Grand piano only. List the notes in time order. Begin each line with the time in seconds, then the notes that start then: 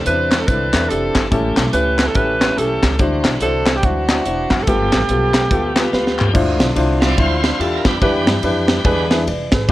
Already playing: C3
0.05 C4 D4 E4 C5
0.47 C4 D4 E4 A4
0.72 C4 D4 E4 A4
0.89 C4 D4 E4 G4
1.31 A2 C#4 E4 G4 A4
1.73 C#4 E4 G4 B4
2.15 C#4 E4 G4 A4
2.40 C#4 E4 G4 B4
2.57 C#4 E4 G4 A4
2.99 D3 D4 E4 F#4 C5
3.41 D4 E4 F#4 C5
3.84 D4 E4 F#4 C5
4.09 D4 E4 F#4 C5
4.26 D4 E4 F#4 C5
4.68 G2 B3 F4 G4 A4
5.10 B3 F4 G4 A4
5.51 B3 F4 G4 A4
5.75 B3 F4 G4 B4
5.93 B3 F4 G4 B4
6.33 D3 D4 E4 F4 C5
6.76 D4 E4 F4 C5
7.18 D4 E4 F4 C5
7.42 D4 E4 F4 D5
7.59 D4 E4 F4 G4
8.01 E3 D4 E4 G4 B4
8.43 D4 E4 G4 B4
8.85 E3 D4 E4 G#4 B4
9.10 D4 E4 G#4 B4
9.27 B4 D5
9.53 G#4 B4
9.69 C4